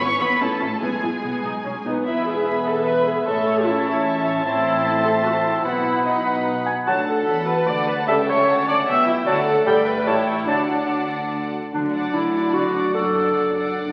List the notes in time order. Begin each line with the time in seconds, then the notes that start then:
0.00 G#1 B3 C#4 E4 C#5 C#6
0.20 G#1 B3 E4 B4 B5
0.40 A1 A3 C#4 E4 A4 A5
0.60 A1 C#4 E4
0.81 B1 G#3 B3 E4 G#4 G#5
1.02 B1 B3 E4
1.23 B1 B3
1.43 B1 D#4
1.64 B1 C#4
1.85 B1 B3 D#4
2.05 E1 E2 B3 E4 B4 E5 B5
2.26 G#4 B4 E5 G#5
2.46 B3 B4 E5 B5
2.66 A4 B4 E5 G#5
2.86 B4 E5 B5
3.06 G#4 B4 E5 G#5
3.26 A1 A2 A3 C#4 A4 E5 A5 C#6
3.46 C#5 A5
3.66 C#4 E4 A4 E5 C#6
3.85 C#5 A5
4.05 A4 E5 C#6
4.25 C#5 A5
4.44 A1 A2 C4 E4 C5 E5 A5 C6
4.85 A3
5.04 A4
5.23 C4 F#4
5.44 E4
5.64 B1 B2 B3 E4 B4 F#5 B5
6.05 D#4 D#5 F#5 B5
6.26 F#5
6.66 G#5
6.87 D2 D3 F#3 D4 F#4 F#5 A5
7.07 A4
7.27 E2 E3 F#4 F#5 A5 B5
7.47 B4 A5
7.67 D2 D3 A3 D5 F#5
7.88 B4
8.07 C#2 C#3 G3 C#4 A4 E5 G5 A5
8.28 C#5
8.48 D2 D3 F#5 A5
8.68 D5
8.87 B1 B2 B3 E5 G5
9.07 E4
9.26 D2 D3 F#3 A3 F#4 D5 F#5 A5
9.47 A4
9.66 G1 G2 G3 D5 G5 B5
9.86 B4
10.06 A1 A2 G3 E4 C#5 G5 A5
10.47 D2 D3 F#3 D4 F#4 D5 F#5 A5
11.72 D2 D3 F#3 D4
11.93 D4 D5 F#5
12.13 D2 D3 E4
12.34 D4 D5 F#5
12.54 D2 D3 F#4
12.74 D4 D5 F#5
12.93 F#1 F#2 D4 A4 D5 F#5
13.14 D4 D5 F#5
13.34 F#1 F#2
13.55 D4 D5 F#5
13.74 F#1 F#2